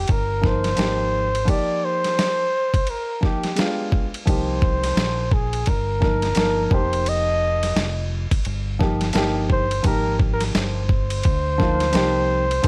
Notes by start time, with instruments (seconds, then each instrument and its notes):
Already playing: flugelhorn G4
0.08 fingered electric bass G1, flugelhorn A#4, kick, ride
0.41 upright piano F3 A#3 D#4 A#4, kick, snare
0.46 flugelhorn C5
0.64 snare, ride
0.76 fingered electric bass G#1, upright piano F3 A#3 D#4 G4, snare, hi-hat pedal, ride
1.35 ride
1.45 upright piano F3 A#3 D#4 G4, kick, ride
1.49 flugelhorn D5
1.84 flugelhorn C5
2.04 snare, ride
2.19 snare, hi-hat pedal, ride
2.74 kick, ride
2.87 flugelhorn A#4, ride
3.21 upright piano F3 A#3 D#4 G4, kick, snare
3.25 flugelhorn G4
3.44 snare, ride
3.56 upright piano G#3 B3 D4 F4, snare, hi-hat pedal, ride
3.92 kick
4.14 ride
4.25 fingered electric bass C2, upright piano F3 A#3 D#4 G4, flugelhorn C5, kick, ride
4.62 kick
4.84 snare, ride
4.97 fingered electric bass A#1, snare, hi-hat pedal, ride
5.32 flugelhorn G#4, kick
5.53 ride
5.66 fingered electric bass G1, flugelhorn A#4, kick, ride
6.00 upright piano F3 A#3 D#4 A#4, kick, snare
6.22 snare, ride
6.35 fingered electric bass G1, upright piano F3 A#3 D#4, snare, hi-hat pedal, ride
6.39 upright piano A#4
6.71 fingered electric bass F1, upright piano F3 A#3 D#4 G4, flugelhorn C5, kick
6.93 ride
7.06 flugelhorn D#5, ride
7.63 snare, ride
7.76 fingered electric bass F1, snare, hi-hat pedal, ride
8.31 kick, ride
8.45 fingered electric bass G1, ride
8.79 upright piano F3 A#3 D#4 G4, kick, snare
9.01 snare, ride
9.13 fingered electric bass G1, upright piano F3 A#3 D#4, snare, hi-hat pedal, ride
9.17 upright piano G4
9.50 flugelhorn C5, kick
9.71 ride
9.83 fingered electric bass G#1, upright piano F3 A#3 D#4 G4, flugelhorn A#4, kick, ride
10.20 kick
10.33 flugelhorn A#4
10.41 snare, ride
10.55 fingered electric bass G1, flugelhorn C5, snare, hi-hat pedal, ride
10.89 kick
11.10 ride
11.23 fingered electric bass D2, kick, ride
11.58 upright piano F3 A#3 D#4 F4, kick, snare
11.80 snare, ride
11.92 fingered electric bass C2, upright piano F3 A#3 D#4 G4, snare, hi-hat pedal, ride
12.51 ride
12.63 fingered electric bass A#1, upright piano F3 A#3, kick, ride